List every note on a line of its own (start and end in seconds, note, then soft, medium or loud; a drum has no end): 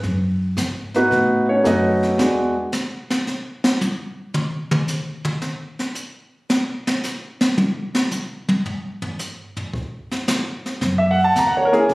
0.03 0.55 F#2 medium
0.03 brush sweep soft
0.03 kick soft
0.03 snare soft
0.57 1.09 G#2 medium
0.57 kick soft
0.57 snare medium
0.57 hi-hat pedal soft
0.94 1.45 B3 medium
0.94 1.45 D#4 medium
0.94 1.45 F#4 medium
0.94 1.45 B4 medium
0.94 snare soft
1.11 1.63 A2 medium
1.11 brush sweep soft
1.11 kick soft
1.11 snare soft
1.49 1.62 C#4 medium
1.49 1.65 C#5 medium
1.63 2.17 F#2 medium
1.63 2.18 A3 medium
1.63 2.18 C#4 medium
1.63 2.18 D#4 medium
1.63 2.17 F#4 medium
1.63 2.08 A4 medium
1.63 2.08 B4 medium
1.63 2.08 D#5 medium
1.63 kick soft
1.63 snare medium
1.63 hi-hat pedal soft
2.03 snare soft
2.17 2.54 E2 medium
2.17 2.51 G#3 medium
2.17 2.52 B3 medium
2.17 2.52 D4 medium
2.17 2.52 F#4 medium
2.17 snare loud
2.72 snare medium
2.72 hi-hat pedal medium
3.10 snare medium
3.27 snare soft
3.64 snare medium
3.81 hi-hat pedal medium
3.81 high tom medium
4.34 mid tom medium
4.71 mid tom loud
4.88 snare soft
4.88 hi-hat pedal medium
5.25 mid tom medium
5.42 snare soft
5.79 snare soft
5.95 hi-hat pedal soft
6.50 snare medium
6.87 snare medium
7.03 snare soft
7.03 hi-hat pedal soft
7.41 snare medium
7.58 high tom medium
7.95 snare medium
8.11 hi-hat pedal medium
8.11 high tom soft
8.48 high tom medium
8.66 floor tom medium
9.02 floor tom medium
9.19 snare soft
9.19 hi-hat pedal soft
9.57 floor tom medium
9.74 kick medium
10.11 snare medium
10.28 snare loud
10.28 hi-hat pedal medium
10.66 snare soft
10.81 11.34 F#2 medium
10.81 brush sweep soft
10.81 kick soft
10.81 snare soft
10.98 11.17 E5 medium
11.11 11.23 F#5 medium
11.24 11.34 A5 medium
11.35 11.88 D#2 medium
11.35 11.49 A#5 loud
11.35 kick soft
11.35 snare medium
11.35 hi-hat pedal medium
11.47 11.53 F#5 medium
11.57 11.74 C#5 medium
11.65 11.77 A#4 medium
11.72 11.88 A#3 medium
11.72 11.88 C#4 medium
11.72 11.88 E4 medium
11.72 11.78 G#4 medium
11.72 snare soft
11.80 11.88 G#4 medium
11.89 11.94 C#2 medium
11.89 brush sweep soft
11.89 kick soft
11.89 snare soft